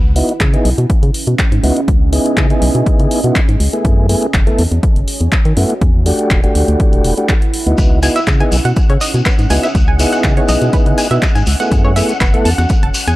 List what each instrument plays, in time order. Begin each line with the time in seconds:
Already playing: fm bass C#2, ambient pad C#4 E4 B4 F#5
0.00 ambient pad G#4
0.16 tonewheel organ B3 D#4 E4 F#4, open hi-hat
0.29 closed hi-hat
0.40 fm bass C#3, kick, clap, closed hi-hat
0.53 tonewheel organ B3 D#4 E4 G#4, closed hi-hat
0.65 fm bass B1, open hi-hat
0.76 fm bass B2, ambient pad D#5, closed hi-hat
0.90 kick, closed hi-hat
1.03 fm bass C#3, closed hi-hat
1.14 open hi-hat
1.27 fm bass B2, closed hi-hat
1.39 kick, clap, closed hi-hat
1.52 fm bass G#2, closed hi-hat
1.63 fm bass C#2, tonewheel organ B3 D#4 E4 F#4, open hi-hat
1.77 closed hi-hat
1.88 fm bass C#2, kick, closed hi-hat
2.12 tonewheel organ B3 D#4 E4 G#4, open hi-hat
2.26 closed hi-hat
2.37 fm bass C#3, kick, clap, closed hi-hat
2.50 tonewheel organ B3 D#4 E4 G#4, closed hi-hat
2.62 fm bass B1, open hi-hat
2.75 fm bass B2, closed hi-hat
2.86 kick, closed hi-hat
2.99 fm bass C#3, closed hi-hat
3.11 open hi-hat
3.24 fm bass B2, tonewheel organ B3 D#4 E4 F#4, closed hi-hat
3.36 kick, clap, closed hi-hat
3.49 fm bass G#2, closed hi-hat
3.60 fm bass C#2, open hi-hat
3.73 tonewheel organ A3 B3 E4 G#4, closed hi-hat
3.85 fm bass F#2, ambient pad F#4, kick, closed hi-hat
4.09 tonewheel organ A3 B3 E4 G#4, ambient pad C#5, open hi-hat
4.22 closed hi-hat
4.34 fm bass F#1, kick, clap, closed hi-hat
4.47 tonewheel organ A3 B3 E4 A4, closed hi-hat
4.59 fm bass E2, open hi-hat
4.72 fm bass E2, closed hi-hat
4.83 kick, closed hi-hat
4.96 fm bass F#1, closed hi-hat
5.08 open hi-hat
5.21 fm bass E2, closed hi-hat
5.32 kick, clap, closed hi-hat
5.45 fm bass D#3, closed hi-hat
5.57 fm bass F#2, tonewheel organ A3 B3 E4 F#4, open hi-hat
5.70 closed hi-hat
5.81 fm bass E2, ambient pad E4, kick, closed hi-hat
5.88 ambient pad B4
6.06 tonewheel organ A3 D4 F#4 G4, open hi-hat
6.19 closed hi-hat
6.24 ambient pad F#5
6.31 fm bass E1, kick, clap, closed hi-hat
6.43 tonewheel organ A3 D4 F#4 G4, closed hi-hat
6.55 fm bass D2, open hi-hat
6.68 fm bass D2, closed hi-hat
6.80 kick, closed hi-hat
6.93 fm bass E1, closed hi-hat
7.04 fm bass E1, open hi-hat
7.17 tonewheel organ A3 D4 F#4 G4, closed hi-hat
7.29 kick, clap, closed hi-hat
7.42 closed hi-hat
7.54 open hi-hat
7.66 fm bass D2, tonewheel organ B3 D#4 E4 F#4, closed hi-hat
7.78 fm bass C#2, ambient pad C#4, synth arpeggio sound B4, string machine F#5, kick, closed hi-hat, shekere
7.96 ambient pad G#4
8.03 tonewheel organ B3 D#4 E4 F#4, ambient pad D#5, synth arpeggio sound G#5, open hi-hat, shekere
8.16 synth arpeggio sound E5, closed hi-hat, shekere
8.27 fm bass C#3, kick, clap, closed hi-hat, shekere
8.40 tonewheel organ B3 D#4 E4 G#4, synth arpeggio sound G#5, closed hi-hat
8.52 fm bass B1, open hi-hat, shekere
8.65 fm bass B2, synth arpeggio sound F#5, closed hi-hat, shekere
8.76 kick, closed hi-hat, shekere
8.90 fm bass C#3, synth arpeggio sound C#5, closed hi-hat
9.01 synth arpeggio sound D#5, open hi-hat, shekere
9.14 fm bass B2, closed hi-hat, shekere
9.26 synth arpeggio sound B4, kick, clap, closed hi-hat, shekere
9.38 fm bass G#2, closed hi-hat, shekere
9.50 fm bass C#2, tonewheel organ B3 D#4 E4 F#4, synth arpeggio sound G#5, open hi-hat, shekere
9.63 synth arpeggio sound E5, closed hi-hat, shekere
9.75 fm bass C#2, kick, closed hi-hat, shekere
9.88 synth arpeggio sound G#5
9.99 tonewheel organ B3 D#4 E4 G#4, open hi-hat, shekere
10.12 synth arpeggio sound F#5, closed hi-hat, shekere
10.23 fm bass C#3, kick, clap, closed hi-hat, shekere
10.37 tonewheel organ B3 D#4 E4 G#4, synth arpeggio sound C#5, closed hi-hat
10.48 fm bass B1, synth arpeggio sound D#5, open hi-hat, shekere
10.61 fm bass B2, closed hi-hat, shekere
10.73 synth arpeggio sound B4, kick, closed hi-hat, shekere
10.86 fm bass C#3, closed hi-hat
10.98 synth arpeggio sound G#5, open hi-hat, shekere
11.11 fm bass B2, tonewheel organ B3 D#4 E4 F#4, synth arpeggio sound E5, closed hi-hat, shekere
11.22 kick, clap, closed hi-hat, shekere
11.35 fm bass G#2, synth arpeggio sound G#5, closed hi-hat, shekere
11.46 fm bass C#2, open hi-hat, shekere
11.60 tonewheel organ A3 B3 E4 G#4, synth arpeggio sound F#5, closed hi-hat, shekere
11.72 fm bass F#2, ambient pad F#4, kick, closed hi-hat, shekere
11.85 synth arpeggio sound C#5
11.93 tonewheel organ A3 B3 E4 G#4, synth arpeggio sound E5, ambient pad G#5, open hi-hat, shekere
12.09 closed hi-hat, shekere
12.15 ambient pad C#5
12.21 fm bass F#1, synth arpeggio sound B4, kick, clap, closed hi-hat, shekere
12.34 tonewheel organ A3 B3 E4 A4, closed hi-hat
12.45 fm bass E2, synth arpeggio sound A5, open hi-hat, shekere
12.58 fm bass E2, synth arpeggio sound F#5, closed hi-hat, shekere
12.69 kick, closed hi-hat, shekere
12.83 fm bass F#1, synth arpeggio sound A5, closed hi-hat
12.94 open hi-hat, shekere
13.07 fm bass E2, synth arpeggio sound G#5, closed hi-hat, shekere